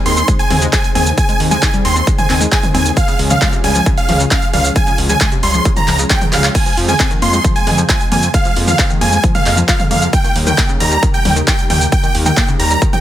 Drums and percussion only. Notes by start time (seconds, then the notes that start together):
0.06 open hi-hat
0.17 closed hi-hat, shaker
0.28 kick, closed hi-hat, shaker
0.39 closed hi-hat, shaker
0.51 open hi-hat, mid tom
0.62 closed hi-hat, shaker
0.73 kick, clap, closed hi-hat, shaker
0.84 closed hi-hat, shaker
0.95 open hi-hat, mid tom
1.06 closed hi-hat, shaker
1.18 kick, closed hi-hat, shaker
1.29 closed hi-hat, shaker
1.40 open hi-hat
1.51 mid tom, shaker
1.62 kick, clap, closed hi-hat, shaker
1.74 closed hi-hat, shaker
1.85 open hi-hat
1.96 closed hi-hat, shaker
2.07 kick, closed hi-hat, shaker
2.19 closed hi-hat, mid tom, shaker
2.30 clap, open hi-hat
2.41 closed hi-hat, shaker
2.52 kick, clap, closed hi-hat, shaker
2.63 closed hi-hat, mid tom, shaker
2.75 open hi-hat, mid tom
2.86 closed hi-hat, shaker
2.97 kick, closed hi-hat, shaker
3.08 closed hi-hat, shaker
3.19 open hi-hat
3.30 mid tom, shaker
3.41 kick, clap, closed hi-hat, shaker
3.53 closed hi-hat, shaker
3.64 open hi-hat
3.75 closed hi-hat, shaker
3.86 kick, closed hi-hat, shaker
3.97 closed hi-hat, shaker
4.09 open hi-hat, mid tom
4.20 closed hi-hat, shaker
4.31 kick, clap, closed hi-hat, shaker
4.42 closed hi-hat, shaker
4.53 open hi-hat, mid tom
4.65 shaker
4.76 kick, closed hi-hat, shaker
4.87 closed hi-hat, shaker
4.98 open hi-hat
5.09 mid tom, shaker
5.21 kick, clap, closed hi-hat, shaker
5.32 closed hi-hat, shaker
5.43 open hi-hat
5.54 closed hi-hat, shaker
5.65 kick, closed hi-hat, shaker
5.77 closed hi-hat, mid tom, shaker
5.88 clap, open hi-hat
5.99 closed hi-hat, shaker
6.10 kick, clap, closed hi-hat, shaker
6.21 closed hi-hat, mid tom, shaker
6.33 clap, open hi-hat, mid tom
6.44 clap, shaker
6.55 kick, closed hi-hat, crash, shaker
6.66 closed hi-hat, shaker
6.77 open hi-hat
6.89 closed hi-hat, mid tom, shaker
7.00 kick, clap, closed hi-hat, shaker
7.11 closed hi-hat, shaker
7.22 open hi-hat
7.33 closed hi-hat, shaker
7.44 kick, closed hi-hat, shaker
7.56 closed hi-hat, shaker
7.67 open hi-hat, mid tom
7.78 closed hi-hat, shaker
7.89 kick, clap, closed hi-hat, shaker
8.00 closed hi-hat, shaker
8.12 open hi-hat, mid tom
8.23 closed hi-hat, shaker
8.34 kick, closed hi-hat, shaker
8.45 closed hi-hat, shaker
8.56 open hi-hat
8.68 closed hi-hat, mid tom, shaker
8.79 kick, clap, closed hi-hat, shaker
8.90 closed hi-hat, shaker
9.01 open hi-hat
9.13 closed hi-hat, shaker
9.24 kick, closed hi-hat, shaker
9.35 closed hi-hat, mid tom, shaker
9.46 clap, open hi-hat
9.57 shaker
9.68 kick, clap, closed hi-hat, shaker
9.80 closed hi-hat, mid tom, shaker
9.91 open hi-hat, mid tom
10.02 closed hi-hat, shaker
10.13 kick, closed hi-hat, shaker
10.24 closed hi-hat, shaker
10.36 open hi-hat
10.47 closed hi-hat, mid tom, shaker
10.58 kick, clap, closed hi-hat, shaker
10.69 closed hi-hat, shaker
10.80 open hi-hat
10.92 closed hi-hat, shaker
11.03 kick, closed hi-hat, shaker
11.14 closed hi-hat, shaker
11.25 open hi-hat, mid tom
11.36 closed hi-hat, shaker
11.47 kick, clap, closed hi-hat, shaker
11.59 closed hi-hat, shaker
11.70 open hi-hat, mid tom
11.81 closed hi-hat, shaker
11.92 kick, closed hi-hat, shaker
12.04 closed hi-hat, shaker
12.15 open hi-hat
12.26 closed hi-hat, mid tom, shaker
12.37 kick, clap, closed hi-hat, shaker
12.48 closed hi-hat, shaker
12.60 open hi-hat
12.71 closed hi-hat, shaker
12.82 kick, closed hi-hat, shaker
12.93 closed hi-hat, mid tom, shaker